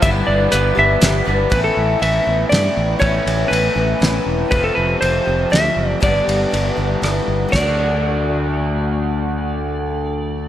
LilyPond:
<<
  \new Staff \with { instrumentName = "Electric slide guitar" } { \time 3/4 \key d \major \tempo 4 = 120 e''8 d''8 b'8 e''4 r8 | b'16 a'8. e''4 d''4 | cis''4 b'4. r8 | b'16 a'16 b'8 c''4 e''4 |
d''2 r4 | d''2.~ | d''2. | }
  \new Staff \with { instrumentName = "Twelve-string acoustic guitar" } { \time 3/4 \key d \major <g, d e g b g'>4 <e g b g'>8 <e g b g'>8 <e g b g'>8 <e g b g'>8 | <a, e b cis' e'>4 <e b cis' e'>8 <b cis' e'>8 <e b e'>4 | <a, e b cis' e'>4 <e b cis' e'>8 <b cis' e'>8 <e b cis' e'>4 | <f a c' g'>4 <f a c' g'>8 <a c' g'>8 <f a c' g'>4 |
<g, d e g b g'>4 <e g b g'>8 <e g b g'>8 <e g b g'>4 | <d fis a d' fis'>2.~ | <d fis a d' fis'>2. | }
  \new Staff \with { instrumentName = "Overdriven electric guitar" } { \time 3/4 \key d \major <g b d' b'>2~ <g b d' b'>8 <g b d' b'>8 | <a, e a cis' e'>2. | <a, e a cis' e'>2. | <f, c f a c' f'>2. |
<g, d g b d' g'>2. | <d a d' fis'>2.~ | <d a d' fis'>2. | }
  \new Staff \with { instrumentName = "Fingered electric bass" } { \clef bass \time 3/4 \key d \major g,,8 g,,8 g,,8 g,,8 g,,8 g,,8 | a,,8 a,,8 a,,8 a,,8 g,8 a,,8 | a,,8 a,,8 a,,8 a,,8 a,,8 e,,8 | f,,8 f,,8 f,,8 f,,8 d,8 fis,,8 |
g,,8 g,,8 g,,8 g,,8 g,,8 g,,8 | d,2.~ | d,2. | }
  \new DrumStaff \with { instrumentName = "Drums" } \drummode { \time 3/4 <hh bd>4 hh4 <hh sn>4 | <bd cymr>4 cymr4 <cymr sn>4 | <bd cymr>8 cymr8 cymr4 <cymr sn>4 | <bd cymr>4 cymr4 <cymr sn>4 |
<bd cymr>8 cymr8 cymr4 <cymr ss>4 | <cymc bd sn>4 r4 r4 | r4 r4 r4 | }
>>